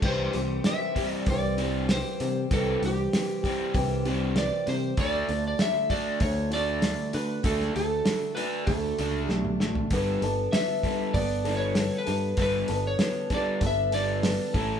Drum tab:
CC |x---------------|----------------|----------------|----------------|
HH |--o-o-o-o-o-o-o-|o-o-o-o-o-o-o-o-|o-o-o-o-o-o-o-o-|o-o-o-o-o-o-----|
SD |----o-------o---|----o-------o---|----o-------o---|-o--o-------o-o-|
T2 |----------------|----------------|----------------|-------------o--|
FT |----------------|----------------|----------------|---------------o|
BD |o-----o-o-------|o-----o-o-------|o-----o-o-------|o-------o-------|

CC |----------------|----------------|
HH |o-o-o-o-o-o-o-o-|o-o-o-o-o-o-o-o-|
SD |----o-------o---|----o-------o---|
T2 |----------------|----------------|
FT |----------------|----------------|
BD |o-----o-o-------|o-----o-o-----o-|